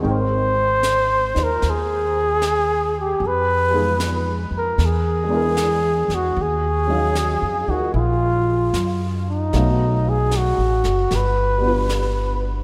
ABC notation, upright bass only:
X:1
M:4/4
L:1/8
Q:"Swing" 1/4=76
K:Abmix
V:1 name="Upright bass" clef=bass
A,,,3 E,, E,,4 | F,,3 F,, =E,,3 E,, | E,,2- (3E,, F,, =D,, B,,,2 G,,2 | =B,,,2- (3B,,, =A,,, ^F,,, =G,,,4 |]